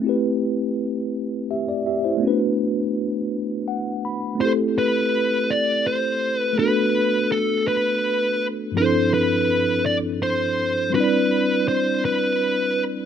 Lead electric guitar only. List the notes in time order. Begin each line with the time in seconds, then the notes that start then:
4.41 C5
4.78 B4
5.50 D5
5.87 C5
6.38 B4
6.59 B4
7.32 A4
7.68 B4
8.77 C5
9.14 B4
9.86 D5
10.23 C5
10.95 B4
11.68 C5
12.05 B4